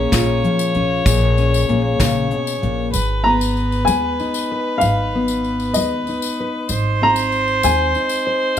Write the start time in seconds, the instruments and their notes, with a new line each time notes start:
Already playing: upright bass A#1, steel-string acoustic guitar A#2 A#3 C#4 G#4, fiddle C#5
0.12 upright bass A#1, steel-string acoustic guitar F4, kick, snare, closed hi-hat, tambourine
0.44 steel-string acoustic guitar F3 G#4, closed hi-hat
0.59 tambourine
0.75 upright bass A#1, steel-string acoustic guitar C#4, closed hi-hat
1.05 upright bass A#1, steel-string acoustic guitar A#2 G#4, kick, closed hi-hat, tambourine
1.37 steel-string acoustic guitar C#4, closed hi-hat, tambourine
1.54 tambourine
1.69 upright bass A#1, steel-string acoustic guitar A#3 G#4, closed hi-hat
2.00 upright bass A#1, steel-string acoustic guitar C#3, kick, snare, closed hi-hat, tambourine
2.31 steel-string acoustic guitar B2, closed hi-hat
2.47 tambourine
2.62 upright bass A#1, steel-string acoustic guitar A#2, closed hi-hat
2.93 upright bass G#1, steel-string acoustic guitar G#2, fiddle B4, tambourine
3.24 steel-string acoustic guitar B3, upright piano A#5
3.41 tambourine
3.57 tambourine
3.72 tambourine
3.85 upright bass D#2, steel-string acoustic guitar G#3, upright piano G#5, tambourine
4.20 steel-string acoustic guitar D#4, tambourine
4.34 tambourine
4.51 steel-string acoustic guitar B4
4.78 upright piano F5, tambourine
4.82 upright bass G#1, steel-string acoustic guitar G#2
5.15 steel-string acoustic guitar B3
5.28 tambourine
5.44 tambourine
5.60 tambourine
5.74 upright bass D#2, steel-string acoustic guitar G#3, upright piano D#5, tambourine
6.07 steel-string acoustic guitar D#4, tambourine
6.22 tambourine
6.40 steel-string acoustic guitar B4
6.69 upright bass G#1, steel-string acoustic guitar G#2, fiddle C5, tambourine
7.01 steel-string acoustic guitar C4, upright piano A#5
7.16 tambourine
7.32 tambourine
7.48 tambourine
7.63 upright bass D#2, steel-string acoustic guitar G#3, upright piano G#5, tambourine
7.95 steel-string acoustic guitar D#4, tambourine
8.09 tambourine
8.27 steel-string acoustic guitar C5